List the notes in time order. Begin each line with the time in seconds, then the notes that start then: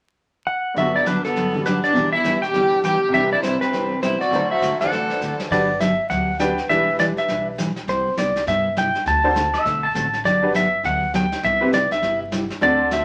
0.47 F#5
0.74 G2 D3 F#3 B3 D4 F#4 G4 E5, brush sweep, snare
0.78 B3 A4
0.96 E4 D5
1.06 G2 D3 F#3 B3 D4 G4 B4, snare, hi-hat pedal
1.24 B3 A4, snare
1.36 G2 D3 F#3 B3 D4 G4, brush sweep, snare
1.53 D3 E3 G3 F#4
1.65 G2 D3 F#3 B3 D4 G4 B4, snare, hi-hat pedal
1.83 D4 D5, snare
1.93 E2 B2 E3 G3 D4, brush sweep, snare
1.97 E4 G4 B4
2.13 E4 E5
2.24 E3 G3 D4 E4 B4, snare, hi-hat pedal
2.42 G4 G5, snare
2.53 D3 E3 G3 D4 E4 G4 B4, brush sweep, snare
2.83 E3 G3 D4 E4 G4 B4 G5, snare, hi-hat pedal
3.08 C2 C3
3.13 C3 E3 G3 B3 D4 E4 G4 E5, brush sweep, snare
3.19 B4
3.32 E4 D5
3.42 C3 G3 B3 E4 G4 C5, snare, hi-hat pedal
3.61 C4 B4, snare
3.73 C3 G3 B3 E4 G4, brush sweep, snare
4.02 C3 G3 B3 E4 G4 C5, snare, hi-hat pedal
4.20 F#4 D5, snare
4.30 D2 D3 F#3 A3 C4 E4 F#4 A4, brush sweep, snare
4.35 C5
4.51 F#4 E5
4.61 D3 A3 C4 F#4 A4, snare, hi-hat pedal
4.80 E3 A3 F#4 A4 D5 F#5, snare
4.92 D3 A3 C4 F#4 A4, brush sweep, snare
5.10 snare
5.21 D3 A3 C4 F#4 A4, snare, hi-hat pedal
5.40 snare
5.51 G1 D3 F#3 B3 D4 F#4 G4 B4 D5, brush sweep, kick, snare, crash
5.80 D3 F#3 B3 D4 G4 E5, snare, hi-hat pedal
6.10 D2 D3 F#3 B3 D4 G4 F#5, brush sweep, snare
6.39 D3 F#3 B3 D4 F#4 G4 B4 G5, snare, hi-hat pedal
6.58 snare
6.69 E1 E3 G3 D4 E4 G4 B4 E5, brush sweep, snare
6.99 E3 G3 D4 E4 B4 D5, snare, hi-hat pedal
7.17 E5, snare
7.28 B1 E3 G3 D4 E4 B4, brush sweep, snare
7.58 E3 G3 D4 E4 B4, snare, hi-hat pedal
7.76 snare
7.88 C2 C3 G3 B3 E4 G4 C5, brush sweep, snare
8.17 C3 G3 B3 E4 G4 D5, snare, hi-hat pedal
8.36 snare
8.47 G2 C3 G3 B3 E4 G4 E5, brush sweep, snare
8.76 C3 G3 B3 E4 G4 G5, snare, hi-hat pedal
8.95 snare
9.06 D2 D3 A3 C4 F#4 A4 A5, brush sweep, snare
9.24 D4 F#4 A4 C5
9.35 D3 A3 C4 F#4 A4, snare, hi-hat pedal
9.54 E5, snare
9.65 B1 D3 A3 C4 F#4 A4, brush sweep, snare
9.83 A5
9.94 A1 D3 A3 C4 F#4 A4 A5, snare, hi-hat pedal
10.13 snare
10.24 G1 D3 F#3 B3 D4 G4 D5, brush sweep, snare
10.42 D4 F#4 G4 B4
10.54 D3 F#3 B3 D4 G4 E5, snare, hi-hat pedal
10.83 D2 D3 F#3 B3 D4 G4 F#5, brush sweep, snare
11.14 D3 F#3 B3 D4 G4 G5, snare, hi-hat pedal
11.32 snare
11.43 C2 C3 G3 B3 E4 G4 E5, brush sweep, snare
11.60 C4 E4 G4 B4
11.72 C3 G3 B3 E4 G4 D5, snare, hi-hat pedal
11.91 E5, snare
12.01 G1 C3 G3 B3 E4 G4, brush sweep, snare
12.31 C3 G3 B3 E4 G4, snare, hi-hat pedal
12.50 snare
12.61 D2 D3 A3 C4 D4 F#4 A4 D5, brush sweep, snare
12.90 D3 A3 C4 F#4 A4 E5, snare, hi-hat pedal